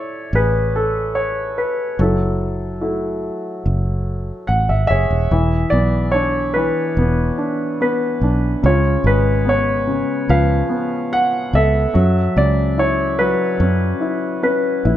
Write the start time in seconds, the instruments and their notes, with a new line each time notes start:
Already playing: grand piano A3 E4 C#5 D5 E5
0.33 fingered electric bass A1, grand piano G#4 B4
0.76 grand piano A4
1.15 grand piano C#5
1.58 grand piano B4
1.99 fingered electric bass F#1, grand piano F#3 E4 A4
2.81 grand piano A3 E4 F#4
3.66 fingered electric bass F#1
4.47 fingered electric bass A1, grand piano F#5
4.69 fingered electric bass G#1, grand piano E5
4.87 fingered electric bass F#1, grand piano G#4 C#5 E5
5.10 fingered electric bass E1
5.31 fingered electric bass E1, grand piano E3
5.70 fingered electric bass B1, grand piano B3 D5
6.12 grand piano D4 C#5
6.54 grand piano E3 B4
6.97 fingered electric bass E1, grand piano B3
7.38 grand piano D4
7.81 grand piano B3 B4
8.21 fingered electric bass B1, grand piano D4
8.63 fingered electric bass C#2, grand piano C#3 F4 C#5
9.04 fingered electric bass G#1, grand piano G#3 B4
9.45 grand piano B3 C#5
9.87 grand piano C#3
10.29 fingered electric bass C#2, grand piano F3 B4 F5
10.69 grand piano B3
11.13 grand piano F#5
11.53 fingered electric bass C#2, grand piano B3 A4 E5
11.94 fingered electric bass F#2, grand piano F#3
12.36 fingered electric bass C#2, grand piano C#3 D5
12.78 grand piano E4 C#5
13.19 grand piano F#3 B4
13.60 fingered electric bass F#2, grand piano C#4
14.01 grand piano E4
14.43 grand piano C#4 B4
14.85 fingered electric bass A#1, grand piano E4